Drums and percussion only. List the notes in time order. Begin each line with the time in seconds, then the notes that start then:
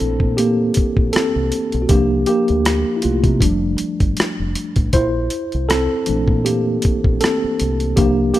0.20 kick
0.38 closed hi-hat
0.74 kick, closed hi-hat
0.97 kick
1.13 cross-stick, closed hi-hat
1.52 closed hi-hat
1.72 closed hi-hat
1.89 kick, closed hi-hat
2.26 closed hi-hat
2.48 closed hi-hat
2.65 cross-stick, closed hi-hat
3.02 closed hi-hat
3.24 kick, closed hi-hat
3.41 kick, closed hi-hat
3.78 closed hi-hat
4.00 kick, closed hi-hat
4.17 cross-stick, closed hi-hat
4.55 closed hi-hat
4.76 kick, closed hi-hat
4.93 kick, closed hi-hat
5.30 closed hi-hat
5.52 closed hi-hat
5.70 cross-stick, closed hi-hat
6.06 closed hi-hat
6.28 kick
6.46 closed hi-hat
6.82 kick, closed hi-hat
7.04 kick
7.21 cross-stick, closed hi-hat
7.59 closed hi-hat
7.80 closed hi-hat
7.97 kick, closed hi-hat
8.34 closed hi-hat